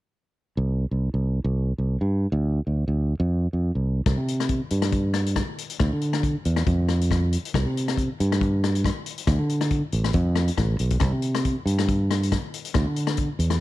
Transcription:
0.57 fingered electric bass C2
0.91 fingered electric bass C2
1.14 fingered electric bass C2
1.44 fingered electric bass C2
1.78 fingered electric bass C2
2.01 fingered electric bass G2
2.32 fingered electric bass D2
2.67 fingered electric bass D2
2.88 fingered electric bass D2
3.20 fingered electric bass F2
3.53 fingered electric bass F2
3.75 fingered electric bass C2
4.06 fingered electric bass C2, kick, cross-stick, closed hi-hat
4.17 fingered electric bass C3
4.28 closed hi-hat
4.40 cross-stick, closed hi-hat
4.49 kick, closed hi-hat
4.70 fingered electric bass G2, closed hi-hat
4.82 cross-stick, closed hi-hat
4.92 kick, closed hi-hat
5.14 cross-stick, closed hi-hat
5.26 closed hi-hat
5.36 kick, cross-stick, closed hi-hat
5.58 closed hi-hat
5.70 closed hi-hat
5.80 fingered electric bass D2, kick, cross-stick, closed hi-hat
5.93 fingered electric bass D3
6.01 closed hi-hat
6.13 cross-stick, closed hi-hat
6.23 kick, closed hi-hat
6.45 fingered electric bass E2, closed hi-hat
6.56 cross-stick, closed hi-hat
6.67 fingered electric bass F2, kick, closed hi-hat
6.88 cross-stick, closed hi-hat
7.01 closed hi-hat
7.11 kick, cross-stick, closed hi-hat
7.33 closed hi-hat
7.45 closed hi-hat
7.54 fingered electric bass C2, kick, cross-stick, closed hi-hat
7.65 fingered electric bass C3
7.77 closed hi-hat
7.88 cross-stick, closed hi-hat
7.97 kick, closed hi-hat
8.20 fingered electric bass G2, closed hi-hat
8.32 cross-stick, closed hi-hat
8.41 kick, closed hi-hat
8.64 cross-stick, closed hi-hat
8.75 closed hi-hat
8.84 kick, cross-stick, closed hi-hat
9.06 closed hi-hat
9.18 closed hi-hat
9.27 fingered electric bass D2, kick, cross-stick, closed hi-hat
9.39 fingered electric bass D3
9.49 closed hi-hat
9.61 cross-stick, closed hi-hat
9.71 kick, closed hi-hat
9.92 fingered electric bass A1, closed hi-hat
10.04 cross-stick, closed hi-hat
10.13 fingered electric bass F2, kick, closed hi-hat
10.35 cross-stick, closed hi-hat
10.48 closed hi-hat
10.57 fingered electric bass A1, kick, cross-stick, closed hi-hat
10.79 fingered electric bass B1, closed hi-hat
10.90 kick, closed hi-hat
11.00 fingered electric bass C2, kick, cross-stick, closed hi-hat
11.12 fingered electric bass C3
11.22 closed hi-hat
11.35 cross-stick, closed hi-hat
11.45 kick, closed hi-hat
11.66 fingered electric bass G2, closed hi-hat
11.79 cross-stick, closed hi-hat
11.89 kick, closed hi-hat
12.11 cross-stick, closed hi-hat
12.23 closed hi-hat
12.32 kick, cross-stick, closed hi-hat
12.54 closed hi-hat
12.65 closed hi-hat
12.74 fingered electric bass D2, kick, cross-stick, closed hi-hat
12.86 fingered electric bass D3
12.96 closed hi-hat
13.07 cross-stick, closed hi-hat
13.17 kick, closed hi-hat
13.39 fingered electric bass E2, closed hi-hat
13.50 cross-stick, closed hi-hat

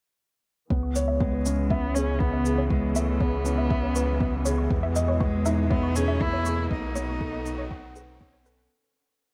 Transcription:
0.70 analog synth bass C#2, string section C#3 E3 G#3 B3, felt piano B3, synth arpeggio sound C#5, kick, riser
0.83 synth arpeggio sound C#6
0.95 felt piano C#5, shaker
1.08 synth arpeggio sound E5
1.20 cello G#3, felt piano B3, kick
1.33 synth arpeggio sound C#5
1.46 felt piano C#4, synth arpeggio sound C#6, shaker
1.70 cello B3, synth arpeggio sound E5, felt piano E5, kick
1.95 cello C#4, felt piano G#4, synth arpeggio sound C#5, shaker
2.08 synth arpeggio sound C#6
2.20 cello B3, felt piano B3, kick
2.33 synth arpeggio sound E5
2.45 felt piano G#4, shaker
2.58 synth arpeggio sound C#5
2.69 cello G#3, felt piano B3, string section C#4, synth arpeggio sound C#6, kick
2.95 cello A3, felt piano B3, synth arpeggio sound E5, shaker
3.20 cello B3, felt piano G#4, synth arpeggio sound C#5, kick
3.33 synth arpeggio sound C#6
3.45 felt piano C#4, shaker
3.58 synth arpeggio sound E5
3.70 felt piano E5, kick
3.83 synth arpeggio sound C#5
3.95 felt piano B4, synth arpeggio sound C#6, shaker
4.20 felt piano B3, synth arpeggio sound E5, kick
4.45 felt piano G#4, synth arpeggio sound C#5, shaker
4.58 synth arpeggio sound C#6
4.71 analog synth bass E2, string section B2 B3, felt piano B3, kick
4.83 synth arpeggio sound E5
4.96 felt piano D#5, shaker
5.08 synth arpeggio sound C#5
5.20 cello G#3, felt piano B3, synth arpeggio sound C#6, kick
5.46 felt piano D#4, synth arpeggio sound E5, shaker
5.70 cello B3, synth arpeggio sound C#5, felt piano E5, kick
5.83 synth arpeggio sound C#6
5.96 cello C#4, felt piano G#4, shaker
6.08 synth arpeggio sound E5
6.21 felt piano B3, cello E4, kick
6.33 synth arpeggio sound C#5
6.45 felt piano G#4, synth arpeggio sound C#6, shaker
6.71 analog synth bass B1, string section A3 F#4, felt piano B3, cello D#4, synth arpeggio sound D#5, kick
6.95 felt piano B3, synth arpeggio sound C#5, shaker
7.09 synth arpeggio sound C#6
7.21 felt piano A4, kick
7.33 synth arpeggio sound D#5
7.46 felt piano D#4, shaker
7.58 synth arpeggio sound C#5
7.71 felt piano F#5, synth arpeggio sound C#6, kick
7.96 synth arpeggio sound G#4, felt piano B4, shaker
8.21 felt piano B3, synth arpeggio sound C#5, kick
8.33 synth arpeggio sound C#5
8.46 felt piano A4, synth arpeggio sound B4, shaker
8.58 synth arpeggio sound B4

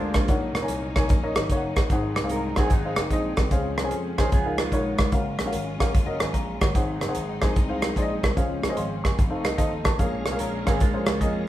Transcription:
Already playing: slap bass D2, string section G#3 A#3 D4 F4, clean electric guitar G#3 F4, grand piano D4 G#4 A#4 C5
0.14 slap bass A#1, kick, cross-stick, closed hi-hat
0.28 slap bass A#1, grand piano A#2 D#4 A#4 C#5 F#5, string section F#3 C#4 D#4, kick, closed hi-hat
0.55 slap bass C#2, cross-stick, closed hi-hat
0.62 grand piano D#4 A#4 C#5 G#5
0.68 slap bass C2, closed hi-hat
0.96 grand piano D#4 A#4 C#5 G#5, kick, cross-stick, closed hi-hat
1.09 slap bass A#1, kick, closed hi-hat
1.23 grand piano D#4 A#4 C#5 D#5
1.35 slap bass G#1, cross-stick, closed hi-hat
1.50 slap bass F#1, grand piano D#4 A#4 C#5 F5, kick, closed hi-hat
1.57 grand piano F#5
1.76 slap bass G1, kick, cross-stick, closed hi-hat
1.88 slap bass G#1, grand piano G#2 D#4 G#4 C5, string section G#3 C4 D#4, kick, closed hi-hat
1.92 grand piano F#5
2.16 slap bass C#2, cross-stick, closed hi-hat
2.24 grand piano D#4 G#4 C5 F5
2.29 slap bass C2, clean electric guitar A#4, closed hi-hat
2.56 slap bass A#1, clean electric guitar C4 G#4, grand piano D#4 G#4 C5 F#5, kick, cross-stick, closed hi-hat
2.70 slap bass G#1, clean electric guitar F#3 D#4, kick, closed hi-hat
2.84 grand piano D#4 G#4 C5 F5
2.96 slap bass F#1, cross-stick, closed hi-hat
3.10 slap bass A#1, grand piano D#4 G#4 C5 D#5, kick, closed hi-hat
3.37 slap bass C2, kick, cross-stick, closed hi-hat
3.51 slap bass C#2, grand piano C#3 C#4 G#4 C5 F5, string section F3 G#3 C#4, kick, closed hi-hat
3.78 slap bass C2, cross-stick, closed hi-hat
3.84 grand piano C#4 G#4 C5 G#5
3.91 slap bass F2, closed hi-hat
4.18 slap bass C#2, grand piano C#4 G#4 C5 G#5, clean electric guitar D#4 C5, kick, cross-stick, closed hi-hat
4.31 slap bass C#2, grand piano C#3, string section G#3 B3 D#4, clean electric guitar B3 G#4, kick, closed hi-hat
4.45 grand piano D#4 A#4 B4 F5
4.58 clean electric guitar G#3 F4, cross-stick, closed hi-hat
4.72 slap bass A#1, grand piano D#4 A#4 B4 C#5, kick, closed hi-hat
4.98 slap bass F1, kick, cross-stick, closed hi-hat
5.12 slap bass F#1, string section F#3 C#4 F4, grand piano C#4 F#4 A#4 F5, kick, closed hi-hat
5.39 slap bass A#1, cross-stick, closed hi-hat
5.46 grand piano C#4 F#4 A#4 F5
5.53 slap bass G#1, closed hi-hat
5.79 slap bass A#1, grand piano C#4 F#4 A#4 F5, kick, cross-stick, closed hi-hat
5.95 slap bass F#1, kick, closed hi-hat
6.06 grand piano C#4 F#4 A#4 D#5
6.20 slap bass G#1, grand piano G#5 C#6, cross-stick, closed hi-hat
6.34 slap bass A#1, grand piano F5 A#5, kick, closed hi-hat
6.61 slap bass G1, grand piano C#5 F#5, kick, cross-stick, closed hi-hat
6.74 slap bass G#1, grand piano G#2 D#4 G#4 C5 F#5, string section G#3 C4 D#4, kick, closed hi-hat
7.01 slap bass F#1, cross-stick, closed hi-hat
7.07 grand piano D#4 G#4 C5 F#5
7.15 slap bass G#1, closed hi-hat
7.41 slap bass A#1, grand piano D#4 G#4 C5 G#5, kick, cross-stick, closed hi-hat
7.56 slap bass C2, kick, closed hi-hat
7.68 grand piano D#4 G#4 C5 F5
7.82 cross-stick, closed hi-hat
7.96 slap bass A#1, grand piano D#4 G#4 C5 D5, kick, closed hi-hat
8.02 grand piano D#5
8.23 slap bass C2, kick, cross-stick, closed hi-hat
8.36 slap bass C#2, grand piano C#3 C#4 G#4 C5 F5, string section F3 C4 C#4, kick, closed hi-hat
8.63 slap bass A#1, cross-stick, closed hi-hat
8.69 grand piano C#4 G#4 C5 D#5
8.77 slap bass G#1, grand piano F5 C6, closed hi-hat
9.04 slap bass F#1, grand piano G#5 C#6, kick, cross-stick, closed hi-hat
9.17 slap bass F1, string section F3 A3 D#4, kick, closed hi-hat
9.30 grand piano D#4 A4 C5 F5
9.44 slap bass C2, grand piano D#5, cross-stick, closed hi-hat
9.57 slap bass D#2, grand piano D#4 A4 C5 D#5 F5, kick, closed hi-hat
9.84 slap bass A1, grand piano A5, kick, cross-stick, closed hi-hat
9.98 slap bass A#1, grand piano A#2 C#4 G#4 A#4 F5, string section G#3 A#3 C#4, tonewheel organ G#3 C#4 F4 A#4, kick, closed hi-hat
10.26 slap bass C2, cross-stick, closed hi-hat
10.31 grand piano C#4 G#4 A#4 F5
10.39 slap bass A#1, clean electric guitar C#4 A#4, closed hi-hat
10.65 slap bass G#1, clean electric guitar C4 G#4, grand piano C#4 G#4 A#4 F5, kick, cross-stick, closed hi-hat
10.80 slap bass A#1, clean electric guitar G#3 F4, kick, closed hi-hat
10.93 grand piano C#4 G#4 A#4 C5
11.06 slap bass C#2, cross-stick, closed hi-hat
11.20 slap bass F2, grand piano C#4 G#4 A#4 D#5, kick, closed hi-hat

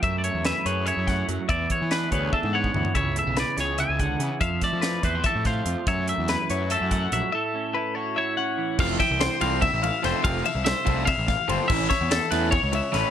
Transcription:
Already playing: clean electric guitar A3
0.03 clean electric guitar F#2 E5, picked electric bass F#2, kick, closed hi-hat
0.18 clean electric guitar D5
0.24 clean electric guitar A3 C#5, closed hi-hat
0.34 picked electric bass E2
0.45 clean electric guitar C#4 B4 E5, snare, closed hi-hat
0.55 clean electric guitar E4
0.66 picked electric bass F#2, clean electric guitar G#4 B4 C#5, closed hi-hat
0.86 clean electric guitar E4 C#5 E5, closed hi-hat
0.97 picked electric bass F#2
1.07 clean electric guitar A3 F#5, kick, snare, closed hi-hat
1.29 picked electric bass F#2, clean electric guitar F#3, closed hi-hat
1.49 picked electric bass E2, clean electric guitar E2 D5 E5, kick, closed hi-hat
1.70 clean electric guitar B3 C#5, kick, closed hi-hat
1.82 picked electric bass E3
1.91 clean electric guitar D4 B4, snare, closed hi-hat
2.12 picked electric bass D2, clean electric guitar G#4 B4 C#5, kick, closed hi-hat
2.33 clean electric guitar D4 A4 E5, kick
2.43 picked electric bass G#2, high tom
2.53 clean electric guitar B3 C#5 F#5
2.64 kick
2.74 picked electric bass D2, clean electric guitar E3, floor tom
2.85 floor tom
2.95 picked electric bass C#2, clean electric guitar C#3 C#5 E5, kick, closed hi-hat
3.16 clean electric guitar A3 E5, closed hi-hat
3.26 picked electric bass B1, clean electric guitar B3
3.37 clean electric guitar E4 B4 D5, snare, closed hi-hat
3.57 picked electric bass C#2, clean electric guitar G#4 C#5, snare, closed hi-hat
3.78 clean electric guitar C#3 E5 G#5, closed hi-hat
3.89 picked electric bass C#2
3.99 clean electric guitar D3 F#5, kick, closed hi-hat
4.20 picked electric bass C#3, clean electric guitar E3, closed hi-hat
4.41 picked electric bass F2, clean electric guitar F2 E5 F5, kick, closed hi-hat
4.61 clean electric guitar A3 D5, kick, snare, closed hi-hat
4.73 picked electric bass F3
4.81 clean electric guitar E4 B4, snare, closed hi-hat
5.03 picked electric bass E2, clean electric guitar E4 B4 C5, kick, closed hi-hat
5.15 clean electric guitar G4
5.24 clean electric guitar A4 E5, kick, closed hi-hat
5.35 picked electric bass A2
5.45 clean electric guitar A3 C5 F5, kick, snare, closed hi-hat
5.66 picked electric bass F2, clean electric guitar F3, closed hi-hat
5.87 picked electric bass F#2, clean electric guitar F#2 C#5 E5, kick, closed hi-hat
6.08 clean electric guitar A3 E5, closed hi-hat
6.18 picked electric bass E2
6.28 clean electric guitar E4 B4, snare, closed hi-hat
6.50 picked electric bass F#2, clean electric guitar E4 C#5, closed hi-hat
6.62 clean electric guitar F#4
6.70 clean electric guitar C#4 A4 E5, closed hi-hat
6.81 picked electric bass F#2, clean electric guitar E4
6.91 clean electric guitar A3 F#5, kick, closed hi-hat
7.12 picked electric bass A#1, clean electric guitar F#3 E5, closed hi-hat
7.32 clean electric guitar A2 A4 E5
7.55 clean electric guitar C#4
7.74 clean electric guitar E4 B4
7.95 clean electric guitar F#4 C#5
8.16 clean electric guitar E4 C#5 E5
8.37 clean electric guitar C#4 F#5
8.58 clean electric guitar E3
8.79 picked electric bass F1, overdriven electric guitar F3 A3 C4 F4, clean electric guitar F5, kick, crash
8.99 clean electric guitar E5 G5, muted overdriven electric guitar stroke, kick, snare, ride
9.11 picked electric bass C2
9.20 clean electric guitar C5, muted overdriven electric guitar stroke, snare, ride
9.41 picked electric bass C2, overdriven electric guitar F3 A3 C4 F4, clean electric guitar F5, ride
9.61 clean electric guitar E5, muted overdriven electric guitar stroke, kick, ride
9.73 picked electric bass A1
9.83 clean electric guitar F5, muted overdriven electric guitar stroke, ride
10.03 picked electric bass F1, overdriven electric guitar F3 A3 C4 F4, clean electric guitar C5, snare, ride
10.24 picked electric bass F1, overdriven electric guitar F3 A3 C4 F4, clean electric guitar F5, kick, ride
10.45 clean electric guitar E5, muted overdriven electric guitar stroke, ride
10.55 picked electric bass C2
10.64 clean electric guitar C5 E5, muted overdriven electric guitar stroke, snare, ride
10.86 picked electric bass C2, overdriven electric guitar F3 A3 C4 F4, kick, ride
11.05 clean electric guitar E5 F5, muted overdriven electric guitar stroke, kick, ride
11.18 picked electric bass A1
11.28 clean electric guitar F5, muted overdriven electric guitar stroke, kick, snare, ride
11.48 picked electric bass G1, overdriven electric guitar F3 A3 C4 F4, clean electric guitar C5, ride
11.68 picked electric bass A1, overdriven electric guitar E3 A3 C#4 E4, clean electric guitar E5, kick, crash
11.89 clean electric guitar C#5 E5, muted overdriven electric guitar stroke, kick, snare, ride
12.01 picked electric bass E2
12.11 clean electric guitar A4, muted overdriven electric guitar stroke, snare, ride
12.31 picked electric bass E2, overdriven electric guitar E3 A3 C#4 E4, clean electric guitar B4, snare, ride
12.51 clean electric guitar C#5, muted overdriven electric guitar stroke, kick, ride
12.63 picked electric bass C#2
12.72 clean electric guitar E5, muted overdriven electric guitar stroke, ride
12.92 picked electric bass A1, overdriven electric guitar E3 A3 C#4 E4, clean electric guitar B4, snare, ride

